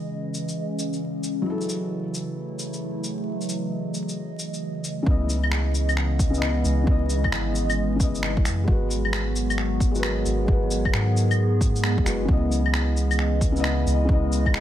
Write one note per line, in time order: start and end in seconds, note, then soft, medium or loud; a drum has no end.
0.00 1.42 C#3 medium
0.00 5.03 C#3 medium
0.00 5.02 E3 medium
0.00 1.42 G#3 medium
0.00 1.43 B3 medium
0.00 1.44 C#4 medium
0.00 1.44 E4 medium
0.00 1.42 D#5 medium
0.00 1.46 D#5 medium
0.34 shaker soft
0.48 shaker soft
0.79 shaker soft
0.93 shaker soft
1.24 shaker soft
1.42 5.03 F#3 medium
1.42 5.03 A3 medium
1.42 3.24 E4 medium
1.46 5.05 E4 medium
1.46 5.07 A4 medium
1.61 shaker soft
1.69 shaker soft
2.14 shaker soft
2.59 shaker soft
2.73 shaker soft
3.04 shaker soft
3.25 5.04 D#5 medium
3.41 shaker soft
3.49 shaker medium
3.94 shaker medium
4.09 shaker soft
4.39 shaker soft
4.54 shaker soft
4.84 shaker medium
5.03 6.28 C#3 medium
5.03 8.64 C#3 medium
5.03 8.64 E3 medium
5.03 6.30 B3 medium
5.03 8.64 D#5 medium
5.03 kick loud
5.07 6.64 C#2 loud
5.07 12.25 G#3 medium
5.07 8.64 B3 medium
5.07 6.31 E4 medium
5.11 6.33 D#5 medium
5.29 shaker medium
5.44 claves medium
5.51 finger snap loud
5.74 shaker medium
5.89 claves medium
5.89 shaker soft
5.97 finger snap medium
6.19 kick loud
6.19 shaker medium
6.30 6.82 C#3 medium
6.30 6.84 B3 medium
6.30 shaker soft
6.35 6.86 E4 medium
6.35 6.87 D#5 medium
6.42 finger snap loud
6.65 6.86 C#2 medium
6.65 shaker medium
6.83 7.31 C#2 loud
6.83 7.95 C#3 medium
6.83 7.97 B3 medium
6.83 kick loud
6.89 7.99 E4 medium
6.89 8.00 D#5 medium
7.10 shaker medium
7.24 kick medium
7.24 claves medium
7.32 8.46 G#1 medium
7.32 finger snap loud
7.55 shaker medium
7.70 claves medium
7.70 shaker soft
7.96 8.64 C#3 medium
7.96 8.65 B3 medium
7.96 kick loud
7.96 shaker medium
8.01 8.66 E4 medium
8.01 8.68 D#5 medium
8.15 shaker soft
8.23 finger snap loud
8.37 kick loud
8.45 8.66 F#2 loud
8.45 finger snap medium
8.45 shaker medium
8.64 10.25 G#1 loud
8.64 12.25 F#3 medium
8.64 9.90 G#3 medium
8.64 14.60 B3 medium
8.64 10.46 F#4 medium
8.64 9.92 F#4 medium
8.64 kick loud
8.68 12.25 D#3 medium
8.68 9.94 B4 medium
8.91 shaker medium
9.05 claves soft
9.13 finger snap loud
9.36 shaker medium
9.50 claves medium
9.50 shaker soft
9.58 finger snap medium
9.80 kick loud
9.80 shaker medium
9.91 10.43 G#3 medium
9.91 shaker soft
9.95 10.46 F#4 medium
10.00 10.48 B4 medium
10.00 finger snap loud
10.25 10.47 G#1 medium
10.25 shaker medium
10.44 10.92 G#1 loud
10.44 11.57 G#3 medium
10.44 12.27 G#4 medium
10.44 kick loud
10.48 11.59 F#4 medium
10.52 11.61 B4 medium
10.71 shaker medium
10.85 kick medium
10.85 claves soft
10.93 11.97 G#2 medium
10.93 finger snap loud
11.16 shaker medium
11.31 claves medium
11.31 shaker soft
11.61 kick loud
11.61 shaker medium
11.76 shaker soft
11.84 finger snap loud
11.98 12.05 B1 loud
11.98 kick loud
12.04 12.27 F#1 loud
12.04 12.26 G#3 medium
12.04 12.27 F#4 medium
12.04 finger snap medium
12.04 shaker medium
12.08 12.28 B4 medium
12.25 13.85 C#2 loud
12.25 13.50 C#3 medium
12.25 14.60 C#3 medium
12.25 14.60 E3 medium
12.25 13.52 B3 medium
12.25 14.60 D#5 medium
12.25 kick loud
12.29 14.60 G#3 medium
12.29 13.53 E4 medium
12.29 13.55 D#5 medium
12.51 shaker medium
12.66 claves soft
12.74 finger snap loud
12.97 shaker medium
13.11 claves medium
13.11 shaker soft
13.19 finger snap medium
13.41 kick loud
13.41 shaker medium
13.52 14.03 C#3 medium
13.52 14.06 B3 medium
13.56 14.08 E4 medium
13.56 14.09 D#5 medium
13.56 shaker soft
13.64 finger snap loud
13.86 14.08 C#2 medium
13.86 shaker medium
14.05 14.60 C#3 medium
14.05 14.60 B3 medium
14.09 14.53 C#2 loud
14.09 14.60 E4 medium
14.09 kick loud
14.13 14.60 D#5 medium
14.32 shaker medium
14.46 kick medium
14.46 claves soft
14.54 14.60 G#1 medium
14.54 finger snap loud